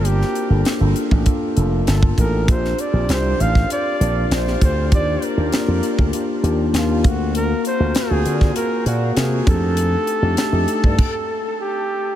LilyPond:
<<
  \new Staff \with { instrumentName = "Flugelhorn" } { \time 4/4 \key bes \major \tempo 4 = 99 g'4 r2 a'8 bes'8 | c''8 d''8 c''8 f''8 d''4 c''8 c''8 | d''8 bes'2 r8 f'8 fis'8 | ais'8 c''8 aes'4 ais'8 fis'8 aes'8 a'8~ |
a'2. g'4 | }
  \new Staff \with { instrumentName = "Tine electric piano" } { \time 4/4 \key bes \major <bes d' f' a''>8. <bes d' f' a'>8 <bes d' f' a'>8. <bes d' f' a'>8 <bes d' f' a'>8. <bes d' f' a'>8. | <c' d' f' g'>8. <c' d' f' g'>8 <c' d' f' g'>8. <c' d' f' g'>8 <c' d' f' bes'>8. <c' d' f' g'>8. | <bes d' f' g'>8. <bes d' f' g'>8 <bes d' f' g'>8. <bes d' f' g'>8 <bes d' f' g'>8. <bes d' f' g'>16 <ais c' fis' eis''>8~ | <ais c' fis' eis''>8. <ais c' eis' fis'>8 <ais c' eis' fis'>8. <ais c' eis' fis'>8 <ais c' fis' eis''>8. <ais c' eis' fis'>16 <a d' ees' g'>8~ |
<a d' ees' g'>8. <a d' ees' g'>8 <a d' ees' g'>8. r2 | }
  \new Staff \with { instrumentName = "Slap bass" } { \clef bass \time 4/4 \key bes \major g,,8 r16 g,,16 r16 g,,16 r16 a,,16 r8 f,,8 g,,8 a,,8 | bes,,8 r16 bes,,16 c,8 a,,8 r8 bes,,8 bes,,8 d,8 | ees,8 r16 ees,16 r16 f,16 r16 d,16 r8 ees,8 ees,8 d,8~ | d,8 r16 d,16 r16 d,16 d8 r8 ais,8 c8 f,8~ |
f,8 r16 f,16 r16 f,16 r16 g,16 r2 | }
  \new DrumStaff \with { instrumentName = "Drums" } \drummode { \time 4/4 hh16 sn16 hh8 <hh sn>8 hh16 bd16 <hh bd>8 hh8 <hh sn>16 bd16 <hh bd>8 | <hh bd>16 sn16 hh8 <hh sn>8 hh16 <bd sn>16 hh8 hh8 <hh sn>16 sn16 <hh bd>8 | <hh bd>8 hh8 <hh sn>8 hh16 bd16 hh8 hh8 <hh sn>8 <hh bd>8 | hh8 hh8 <hh sn>8 hh16 <bd sn>16 hh8 hh8 <hh sn>8 <hh bd>8 |
hh8 hh8 <hh sn>8 hh16 bd16 <cymc bd>4 r4 | }
>>